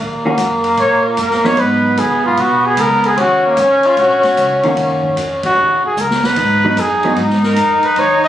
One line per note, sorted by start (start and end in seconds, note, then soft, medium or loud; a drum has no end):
0.00 0.37 D#2 medium
0.00 1.60 A#3 medium
0.25 0.37 D#3 soft
0.25 0.38 A#3 medium
0.25 0.38 C#4 soft
0.25 0.38 F#4 medium
0.38 0.76 F#2 medium
0.38 kick soft
0.38 hi-hat pedal medium
0.38 ride medium
0.64 ride soft
0.77 1.16 A#2 medium
0.77 1.04 C#5 medium
0.77 kick soft
0.77 ride soft
1.06 1.21 F4 soft
1.17 1.56 F#2 medium
1.17 1.47 A#4 medium
1.17 kick soft
1.17 hi-hat pedal soft
1.17 ride medium
1.31 snare soft
1.44 1.96 F#3 medium
1.44 1.96 B3 medium
1.44 1.96 D#4 medium
1.44 1.61 C#5 medium
1.44 snare soft
1.57 1.96 G#2 medium
1.57 3.19 B3 medium
1.57 2.01 B4 medium
1.57 kick soft
1.57 ride medium
1.97 2.11 D#2 medium
1.97 2.25 G#4 medium
1.97 kick soft
1.97 hi-hat pedal soft
1.97 ride medium
2.11 2.23 B1 soft
2.24 2.37 G#1 medium
2.24 2.42 F4 medium
2.37 2.76 B1 medium
2.37 2.67 F#4 medium
2.37 kick soft
2.37 ride soft
2.66 2.82 G#4 medium
2.77 3.16 C#2 medium
2.77 3.08 A#4 medium
2.77 kick soft
2.77 hi-hat pedal soft
2.77 ride medium
3.04 3.22 G#4 medium
3.04 ride soft
3.17 3.56 D#2 medium
3.17 5.92 C#4 loud
3.17 3.45 F#4 medium
3.17 kick soft
3.17 ride medium
3.46 3.62 A#3 medium
3.57 3.96 F#1 medium
3.57 3.88 C#4 medium
3.57 kick soft
3.57 hi-hat pedal medium
3.57 ride medium
3.83 4.01 F4 medium
3.83 ride soft
3.97 4.22 A#1 medium
3.97 4.65 F#4 medium
3.97 kick soft
3.97 ride soft
4.23 muted upright bass stroke soft
4.23 snare soft
4.23 ride soft
4.37 4.76 C#2 medium
4.37 kick soft
4.37 hi-hat pedal medium
4.37 ride medium
4.63 5.15 D#3 medium
4.63 5.15 A#3 medium
4.63 5.15 C#4 medium
4.63 5.16 F#4 medium
4.63 ride soft
4.77 5.16 F#2 medium
4.77 kick soft
4.77 ride medium
5.03 kick soft
5.17 5.56 F2 medium
5.17 kick soft
5.17 hi-hat pedal soft
5.17 ride medium
5.43 5.82 F#4 medium
5.43 kick medium
5.43 ride medium
5.57 5.81 D#2 medium
5.84 6.02 G#4 medium
5.84 muted upright bass stroke soft
5.97 6.36 C#2 medium
5.97 6.27 A#4 medium
5.97 hi-hat pedal soft
6.10 snare soft
6.23 6.81 B4 medium
6.23 snare medium
6.36 6.76 G#2 medium
6.36 8.28 D#4 medium
6.36 kick medium
6.36 ride medium
6.64 6.76 F#3 soft
6.64 6.77 B3 soft
6.64 6.77 D#4 medium
6.77 7.16 F#2 medium
6.77 7.18 G#4 medium
6.77 kick soft
6.77 hi-hat pedal soft
6.77 ride medium
7.03 7.16 F#3 medium
7.03 7.17 B3 medium
7.03 7.17 D#4 medium
7.03 ride soft
7.16 7.56 G#2 medium
7.16 kick soft
7.16 ride soft
7.30 snare soft
7.43 7.86 A#4 medium
7.43 snare soft
7.56 7.81 F2 medium
7.56 kick soft
7.56 hi-hat pedal medium
7.56 ride medium
7.82 8.01 B4 medium
7.82 muted upright bass stroke soft
7.82 ride soft
7.96 8.28 D#2 medium
7.96 8.24 C#5 medium
7.96 kick soft
7.96 ride soft
8.24 8.28 D#5 loud